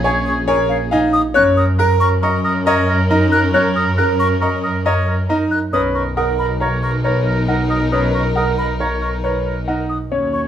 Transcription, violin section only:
0.00 1.09 C#4 loud
0.00 1.10 G#4 medium
1.36 5.47 C#4 loud
1.36 5.47 A#4 medium
5.72 9.85 D#4 medium
5.72 9.85 A#4 medium
10.12 10.48 C#4 medium
10.12 10.48 F#4 medium

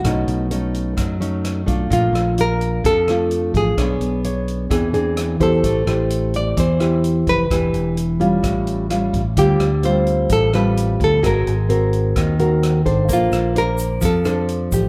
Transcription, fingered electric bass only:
0.05 0.26 B1 medium
0.28 0.94 B1 medium
0.97 1.63 F#2 medium
1.68 1.89 B1 medium
1.91 2.12 A#1 medium
2.13 2.79 A#1 loud
2.85 3.50 F2 medium
3.54 3.76 A1 medium
3.78 3.99 B1 medium
4.00 4.66 B1 medium
4.71 5.36 E2 medium
5.40 5.62 E2 medium
5.64 5.85 A1 medium
5.87 6.53 A1 medium
6.57 7.23 E2 medium
7.27 7.48 F1 medium
7.51 7.72 E1 medium
7.74 8.39 E1 loud
8.44 9.09 A1 medium
9.14 9.35 A1 medium
9.37 9.58 D2 medium
9.60 10.26 D2 medium
10.30 10.95 A1 medium
11.00 11.22 D2 medium
11.24 11.45 G#1 loud
11.47 12.12 G#1 medium
12.16 12.82 D#2 medium
12.86 13.07 G#1 medium
13.10 13.31 A#1 medium
13.32 13.98 A#1 medium
14.03 14.68 F2 medium
14.72 14.89 A1 medium

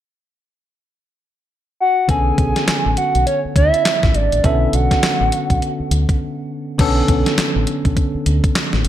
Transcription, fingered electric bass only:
2.09 2.31 B1 loud
2.38 2.51 B1 loud
2.68 muted fingered electric bass stroke soft
2.86 2.94 A1 medium
3.15 3.24 B1 medium
3.45 muted fingered electric bass stroke soft
3.56 3.69 D2 medium
4.03 4.12 A1 medium
4.15 4.28 G#1 medium
4.33 4.41 A1 medium
4.44 4.66 B1 loud
4.73 4.87 B1 loud
5.03 muted fingered electric bass stroke soft
5.21 5.29 A1 medium
5.50 5.59 B1 medium
5.80 muted fingered electric bass stroke soft
5.91 6.04 D2 medium
6.79 7.01 B1 loud
7.09 7.22 B1 loud
7.38 muted fingered electric bass stroke soft
7.56 7.64 A1 medium
7.85 7.94 B1 medium
8.15 muted fingered electric bass stroke soft
8.26 8.39 D2 medium
8.73 8.82 A1 medium
8.85 8.88 G#1 medium

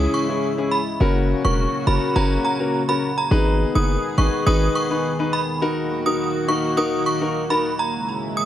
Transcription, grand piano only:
0.00 0.25 C#4 loud
0.00 0.26 E4 medium
0.00 0.26 G#4 loud
0.29 0.49 C#4 medium
0.29 0.49 E4 medium
0.29 0.50 G#4 medium
0.58 0.78 C#4 medium
0.58 0.78 E4 medium
0.58 0.78 G#4 medium
1.00 1.41 C#4 medium
1.00 1.41 F#4 medium
1.00 1.41 A#4 loud
1.44 1.84 C#4 medium
1.44 1.84 F#4 medium
1.44 1.84 A#4 medium
1.87 2.14 C#4 medium
1.87 2.14 F#4 medium
1.87 2.14 A#4 medium
2.16 2.56 C#4 loud
2.16 2.56 F#4 medium
2.16 2.56 A#4 loud
2.60 2.80 C#4 medium
2.60 2.80 F#4 medium
2.60 2.80 A#4 medium
2.89 3.09 C#4 medium
2.89 3.09 F#4 medium
2.89 3.09 A#4 medium
3.31 3.72 D#4 medium
3.31 3.72 G#4 medium
3.31 3.72 B4 loud
3.75 4.14 D#4 medium
3.75 4.15 G#4 medium
3.75 4.15 B4 medium
4.17 4.44 D#4 medium
4.17 4.44 G#4 medium
4.17 4.45 B4 medium
4.46 4.87 D#4 medium
4.46 4.87 G#4 medium
4.46 4.87 B4 loud
4.90 5.11 D#4 medium
4.90 5.11 G#4 medium
4.90 5.11 B4 medium
5.19 5.40 D#4 medium
5.19 5.40 G#4 medium
5.19 5.40 B4 medium
5.62 6.02 D#4 medium
5.62 6.02 F#4 medium
5.62 6.03 A#4 loud
6.06 6.45 D#4 medium
6.06 6.45 F#4 medium
6.06 6.45 A#4 medium
6.48 6.75 D#4 medium
6.48 6.75 F#4 medium
6.48 6.75 A#4 medium
6.77 7.18 D#4 loud
6.77 7.18 F#4 medium
6.77 7.18 A#4 loud
7.21 7.42 D#4 medium
7.21 7.42 F#4 medium
7.21 7.42 A#4 medium
7.50 7.70 D#4 medium
7.50 7.71 F#4 medium
7.50 7.71 A#4 medium

